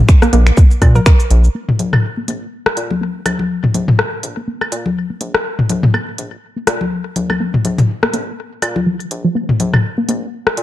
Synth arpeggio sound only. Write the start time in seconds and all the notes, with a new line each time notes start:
0.22 A#3
0.33 A#3
0.95 A#4
1.06 A#4
1.55 A#3
2.17 A#3
2.28 A#3
2.90 A#3
3.01 A#3
3.64 A#3
3.74 A#3
4.37 A#3
4.48 A#3
5.10 A#3
5.21 A#3
5.83 A#3
5.94 A#3
6.56 A#3
6.67 A#3
7.30 A#3
7.40 A#3
8.03 A#3
8.13 A#3
8.76 F4
8.86 F3
9.25 F3
9.35 A#3
9.98 A#3
10.09 A#3